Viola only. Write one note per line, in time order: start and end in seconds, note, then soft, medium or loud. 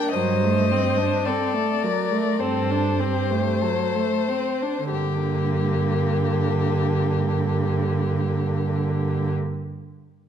0.00 0.16 D4 soft
0.17 0.45 F#3 soft
0.43 0.73 A3 soft
0.72 0.99 C4 soft
0.97 1.27 D4 soft
1.26 1.56 C4 soft
1.54 1.85 A3 soft
1.83 2.13 F#3 soft
2.12 2.40 A3 soft
2.41 2.72 C4 soft
2.71 3.01 D4 soft
3.00 3.32 C4 soft
3.31 3.65 A3 soft
3.63 3.96 F#3 soft
3.95 4.30 A3 soft
4.28 4.64 C4 soft
4.62 4.92 D4 soft
4.92 9.34 D3 soft